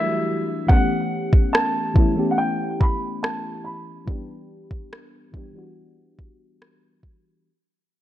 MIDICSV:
0, 0, Header, 1, 4, 480
1, 0, Start_track
1, 0, Tempo, 845070
1, 394, Time_signature, 4, 2, 24, 8
1, 4551, End_track
2, 0, Start_track
2, 0, Title_t, "Grand piano"
2, 0, Program_c, 0, 0
2, 0, Note_on_c, 0, 76, 85
2, 389, Note_on_c, 0, 78, 96
2, 406, Note_off_c, 0, 76, 0
2, 848, Note_off_c, 0, 78, 0
2, 869, Note_on_c, 0, 81, 93
2, 1312, Note_on_c, 0, 78, 69
2, 1325, Note_off_c, 0, 81, 0
2, 1352, Note_on_c, 0, 79, 95
2, 1353, Note_off_c, 0, 78, 0
2, 1593, Note_on_c, 0, 83, 91
2, 1600, Note_off_c, 0, 79, 0
2, 1816, Note_off_c, 0, 83, 0
2, 1834, Note_on_c, 0, 81, 88
2, 2070, Note_on_c, 0, 83, 84
2, 2081, Note_off_c, 0, 81, 0
2, 3729, Note_off_c, 0, 83, 0
2, 4551, End_track
3, 0, Start_track
3, 0, Title_t, "FM electric piano"
3, 0, Program_c, 1, 5
3, 0, Control_c, 1, 64, 127
3, 0, Note_on_c, 1, 52, 76
3, 0, Note_on_c, 1, 55, 68
3, 0, Note_on_c, 1, 57, 67
3, 0, Note_on_c, 1, 62, 69
3, 0, Note_on_c, 1, 64, 79
3, 0, Note_on_c, 1, 66, 64
3, 0, Note_on_c, 1, 67, 84
3, 97, Note_off_c, 1, 52, 0
3, 101, Note_off_c, 1, 55, 0
3, 104, Note_off_c, 1, 57, 0
3, 107, Note_off_c, 1, 62, 0
3, 129, Note_off_c, 1, 67, 0
3, 379, Note_on_c, 1, 52, 72
3, 386, Note_on_c, 1, 57, 61
3, 392, Note_on_c, 1, 59, 62
3, 399, Note_on_c, 1, 61, 61
3, 400, Note_off_c, 1, 64, 0
3, 400, Control_c, 1, 64, 0
3, 402, Note_off_c, 1, 66, 0
3, 406, Note_on_c, 1, 67, 81
3, 513, Control_c, 1, 64, 127
3, 979, Note_off_c, 1, 52, 0
3, 983, Note_off_c, 1, 57, 0
3, 986, Note_off_c, 1, 59, 0
3, 989, Note_off_c, 1, 61, 0
3, 992, Note_off_c, 1, 67, 0
3, 1101, Note_on_c, 1, 52, 71
3, 1108, Note_on_c, 1, 57, 62
3, 1115, Note_on_c, 1, 59, 64
3, 1120, Note_on_c, 1, 61, 64
3, 1127, Note_on_c, 1, 64, 77
3, 1206, Note_off_c, 1, 52, 0
3, 1209, Note_off_c, 1, 57, 0
3, 1213, Note_off_c, 1, 59, 0
3, 1216, Note_off_c, 1, 61, 0
3, 1219, Note_off_c, 1, 64, 0
3, 1221, Note_on_c, 1, 52, 74
3, 1227, Note_on_c, 1, 57, 71
3, 1234, Note_on_c, 1, 59, 69
3, 1240, Note_on_c, 1, 61, 66
3, 1246, Note_on_c, 1, 67, 80
3, 2017, Note_off_c, 1, 52, 0
3, 2021, Note_off_c, 1, 57, 0
3, 2024, Note_off_c, 1, 59, 0
3, 2027, Note_off_c, 1, 61, 0
3, 2030, Note_off_c, 1, 67, 0
3, 2303, Note_on_c, 1, 52, 69
3, 2309, Note_on_c, 1, 55, 64
3, 2315, Note_on_c, 1, 59, 63
3, 2321, Control_c, 1, 64, 0
3, 2322, Note_on_c, 1, 62, 59
3, 2328, Note_on_c, 1, 67, 73
3, 2434, Control_c, 1, 64, 127
3, 2901, Note_off_c, 1, 52, 0
3, 2904, Note_off_c, 1, 55, 0
3, 2907, Note_off_c, 1, 59, 0
3, 2911, Note_off_c, 1, 62, 0
3, 2914, Note_off_c, 1, 67, 0
3, 3021, Note_on_c, 1, 52, 80
3, 3027, Note_on_c, 1, 55, 77
3, 3034, Note_on_c, 1, 59, 77
3, 3040, Note_on_c, 1, 62, 74
3, 3047, Note_on_c, 1, 67, 85
3, 3126, Note_off_c, 1, 52, 0
3, 3129, Note_off_c, 1, 55, 0
3, 3132, Note_off_c, 1, 59, 0
3, 3136, Note_off_c, 1, 62, 0
3, 3139, Note_off_c, 1, 67, 0
3, 3142, Note_on_c, 1, 52, 85
3, 3149, Note_on_c, 1, 55, 77
3, 3155, Note_on_c, 1, 59, 75
3, 3162, Note_on_c, 1, 62, 79
3, 3169, Note_on_c, 1, 66, 93
3, 3938, Note_off_c, 1, 52, 0
3, 3942, Note_off_c, 1, 55, 0
3, 3945, Note_off_c, 1, 59, 0
3, 3948, Note_off_c, 1, 62, 0
3, 3952, Note_off_c, 1, 66, 0
3, 4241, Control_c, 1, 64, 0
3, 4551, End_track
4, 0, Start_track
4, 0, Title_t, "Drums"
4, 394, Note_on_c, 9, 36, 104
4, 451, Note_off_c, 9, 36, 0
4, 754, Note_on_c, 9, 36, 81
4, 811, Note_off_c, 9, 36, 0
4, 879, Note_on_c, 9, 37, 109
4, 936, Note_off_c, 9, 37, 0
4, 1111, Note_on_c, 9, 36, 92
4, 1168, Note_off_c, 9, 36, 0
4, 1595, Note_on_c, 9, 36, 82
4, 1651, Note_off_c, 9, 36, 0
4, 1840, Note_on_c, 9, 37, 104
4, 1897, Note_off_c, 9, 37, 0
4, 2315, Note_on_c, 9, 36, 100
4, 2372, Note_off_c, 9, 36, 0
4, 2674, Note_on_c, 9, 36, 80
4, 2731, Note_off_c, 9, 36, 0
4, 2799, Note_on_c, 9, 37, 103
4, 2855, Note_off_c, 9, 37, 0
4, 3032, Note_on_c, 9, 36, 89
4, 3088, Note_off_c, 9, 36, 0
4, 3514, Note_on_c, 9, 36, 79
4, 3571, Note_off_c, 9, 36, 0
4, 3759, Note_on_c, 9, 37, 96
4, 3816, Note_off_c, 9, 37, 0
4, 3994, Note_on_c, 9, 36, 85
4, 4051, Note_off_c, 9, 36, 0
4, 4551, End_track
0, 0, End_of_file